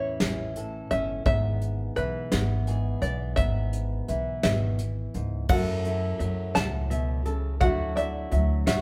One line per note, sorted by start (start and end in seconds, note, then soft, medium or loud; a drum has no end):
0.00 0.16 E2 medium
0.00 0.55 A2 medium
0.00 1.96 E3 medium
0.00 0.20 C#4 medium
0.00 1.97 E4 soft
0.00 0.87 C#5 medium
0.20 0.82 A1 medium
0.20 0.91 C#4 medium
0.20 snare loud
0.20 closed hi-hat medium
0.56 1.22 A2 soft
0.56 1.23 A4 medium
0.56 closed hi-hat medium
0.91 1.22 G1 medium
0.91 1.23 C#4 medium
0.91 1.25 E5 medium
0.91 closed hi-hat soft
1.25 1.88 G#1 medium
1.25 2.66 G#2 medium
1.25 2.32 B3 soft
1.25 1.99 E5 medium
1.25 kick medium
1.25 closed hi-hat medium
1.61 closed hi-hat medium
1.96 2.28 B1 medium
1.96 4.07 E3 medium
1.96 4.09 E4 soft
1.96 2.63 B4 medium
1.96 closed hi-hat soft
2.32 2.94 G#1 medium
2.32 3.02 B3 medium
2.32 snare loud
2.32 closed hi-hat medium
2.67 3.34 G#2 medium
2.67 3.34 G#4 medium
2.67 closed hi-hat soft
3.02 3.33 B1 medium
3.02 3.34 B3 medium
3.02 3.35 D5 medium
3.02 closed hi-hat soft
3.36 4.00 G#1 medium
3.36 4.79 G#2 medium
3.36 5.46 B3 medium
3.36 4.42 E5 medium
3.36 kick medium
3.36 closed hi-hat medium
3.73 closed hi-hat medium
4.08 4.39 B1 medium
4.08 5.50 E3 soft
4.08 5.46 E4 soft
4.08 closed hi-hat medium
4.43 5.06 G#1 medium
4.43 4.79 B2 medium
4.43 5.45 E5 medium
4.43 snare medium
4.43 closed hi-hat medium
4.79 closed hi-hat medium
5.14 5.45 C#2 medium
5.14 5.49 G#2 medium
5.14 closed hi-hat soft
5.49 6.11 F#2 medium
5.49 6.54 F#2 medium
5.49 6.19 F#3 soft
5.49 7.61 A3 medium
5.49 5.86 E4 medium
5.49 6.91 F#4 medium
5.49 7.63 A4 medium
5.49 6.16 F#5 medium
5.49 kick medium
5.49 crash medium
5.85 7.62 E4 soft
5.85 7.24 A4 medium
5.85 closed hi-hat soft
6.19 6.51 F#2 medium
6.19 7.57 F#3 medium
6.19 6.89 E5 medium
6.19 closed hi-hat soft
6.55 7.61 C#2 medium
6.55 6.90 A2 medium
6.55 7.61 F#5 medium
6.55 7.22 A5 medium
6.55 snare medium
6.55 closed hi-hat medium
6.90 7.25 B2 medium
6.90 7.61 E5 medium
6.90 closed hi-hat medium
7.25 7.60 C#3 medium
7.25 7.61 A4 medium
7.25 closed hi-hat soft
7.61 8.23 D2 medium
7.61 8.81 D3 medium
7.61 8.30 F#3 medium
7.61 8.81 A3 medium
7.61 7.97 E4 medium
7.61 8.81 F#4 medium
7.61 8.66 F#4 medium
7.61 7.97 F#5 medium
7.61 kick medium
7.61 closed hi-hat medium
7.96 8.81 E4 medium
7.96 8.81 D5 medium
7.96 8.63 E5 medium
7.96 closed hi-hat medium
8.31 8.63 D2 medium
8.31 8.81 F#3 medium
8.31 8.81 E5 medium
8.31 closed hi-hat medium
8.66 8.81 A1 medium
8.66 8.81 F#4 medium
8.66 8.81 E5 medium
8.66 8.81 F#5 medium
8.66 snare loud
8.66 closed hi-hat medium